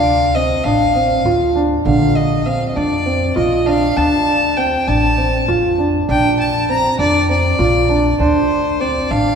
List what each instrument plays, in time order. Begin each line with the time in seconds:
Already playing: upright bass D2, felt piano D4, violin F5
0.35 felt piano C4, violin D#5
0.64 upright bass A1, felt piano D4, violin F5
0.95 felt piano C4
1.25 upright bass D2, felt piano F4
1.55 felt piano D4
1.85 upright bass A#1, felt piano D3, violin F5
2.16 violin D#5
2.46 felt piano C4, violin F5
2.69 violin D#5
2.76 upright bass F2, felt piano D4, violin D5
3.06 felt piano C4
3.36 upright bass A#1, felt piano F4, violin D#5
3.66 felt piano D4, violin F5
3.97 upright bass D2, felt piano D4, violin A5
4.57 felt piano C4, violin G5
4.87 upright bass A1, felt piano D4, violin A5
5.18 felt piano C4
5.48 upright bass F2, felt piano F4
5.78 felt piano D4
6.08 upright bass A#1, felt piano D4, violin G5
6.40 violin A5
6.69 felt piano C4, violin A#5
6.99 upright bass F2, felt piano D4, violin D5
7.29 felt piano C4, violin D5
7.59 upright bass A#1, felt piano F4
7.89 felt piano D4
8.20 upright bass D2, felt piano D4, violin C5
8.80 felt piano C4, violin D5
9.11 upright bass A1, felt piano D4, violin F5